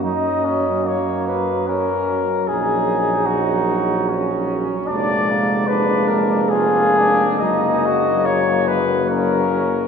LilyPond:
<<
  \new Staff \with { instrumentName = "Cornet" } { \time 3/4 \key ges \major \tempo 4 = 73 ees''4 des''8 ces''8 bes'4 | aes'4 ges'4. r8 | d''4 ces''8 bes'8 aes'4 | ees''4 des''8 ces''8 bes'4 | }
  \new Staff \with { instrumentName = "Flugelhorn" } { \time 3/4 \key ges \major ees'8 des'8 bes4 des'8 r8 | ees'2 des'4 | d'8 bes8 d'4 f'8 d'8 | ees'8 ges'8 bes8 r8 des'4 | }
  \new Staff \with { instrumentName = "Euphonium" } { \time 3/4 \key ges \major des'2.~ | des'2. | bes2.~ | bes2. | }
  \new Staff \with { instrumentName = "Euphonium" } { \clef bass \time 3/4 \key ges \major ges2.~ | ges2. | aes2. | ges2. | }
  \new Staff \with { instrumentName = "Tuba" } { \clef bass \time 3/4 \key ges \major ges,2~ ges,8 r8 | bes,,2. | f,,2. | ges,,2. | }
>>